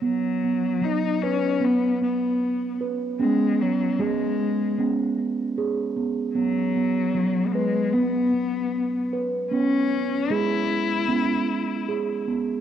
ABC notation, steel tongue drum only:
X:1
M:4/4
L:1/8
Q:1/4=76
K:C#dor
V:1 name="Steel tongue drum"
z B,2 B2 B,2 B | C2 G2 C2 G B, | z B,2 B2 z2 B | C2 G2 C2 G B, |]
V:2 name="Steel tongue drum"
B,2 F,2 B,4 | B,2 G,2 B,4 | B,2 F,2 B,4 | B,2 G,2 B,4 |]